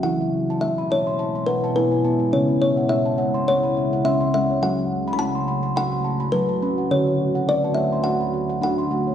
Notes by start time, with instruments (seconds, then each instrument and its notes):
0.03 ambient pad B2 G#3 E4, steel tongue drum E3 E4, kalimba F#5
0.21 steel tongue drum E5
0.50 steel tongue drum A5
0.61 kalimba E5, steel tongue drum E5
0.78 steel tongue drum B5
0.90 kalimba C#5, steel tongue drum E5 A5
1.07 steel tongue drum C6
1.19 steel tongue drum A5
1.35 steel tongue drum C6
1.46 kalimba B4, steel tongue drum F#5
1.64 steel tongue drum A5
1.76 steel tongue drum E4 G#5, kalimba B4
1.92 steel tongue drum G#5
2.05 steel tongue drum B3 A5
2.20 steel tongue drum E5
2.32 ambient pad C#3, steel tongue drum C#3 C#4, kalimba C#5
2.49 steel tongue drum C#5
2.62 kalimba C#5
2.77 steel tongue drum F#5
2.89 steel tongue drum C#5, kalimba E5
3.06 steel tongue drum A5
3.18 steel tongue drum C#5 F#5
3.34 steel tongue drum C6
3.48 kalimba C#5, steel tongue drum F#5
3.63 steel tongue drum B5
3.77 steel tongue drum E5
3.93 steel tongue drum F#5
4.05 steel tongue drum C#4 C6, kalimba E5
4.21 steel tongue drum C6
4.34 steel tongue drum G#3 F#5, kalimba E5
4.50 steel tongue drum C#5
4.62 steel tongue drum F#3 F#4, ambient pad A3 F#4, kalimba F#5
4.78 steel tongue drum F#5
5.08 steel tongue drum B5
5.13 kalimba B5
5.19 steel tongue drum F#5, kalimba A5
5.35 steel tongue drum C6
5.48 steel tongue drum F#5 B5
5.63 steel tongue drum C6
5.76 kalimba F#5, steel tongue drum B5
5.92 steel tongue drum C6
6.04 steel tongue drum A5
6.20 steel tongue drum B5
6.32 steel tongue drum F#3 A5, kalimba B4
6.49 steel tongue drum A5
6.62 steel tongue drum C#4 B5
6.78 steel tongue drum F#5
6.91 steel tongue drum D3 C#4, ambient pad D3, kalimba C#5
7.07 steel tongue drum C#5
7.35 steel tongue drum F#5
7.48 steel tongue drum B4, kalimba D5
7.64 steel tongue drum A5
7.74 steel tongue drum C#5 F#5, kalimba E5
7.92 steel tongue drum C6
8.04 kalimba F#5, steel tongue drum F#5
8.21 steel tongue drum B5
8.33 steel tongue drum E5
8.49 steel tongue drum F#5
8.61 steel tongue drum D4 B5, kalimba F#5
8.78 steel tongue drum C6
8.90 steel tongue drum A3 F#5
9.07 steel tongue drum C#5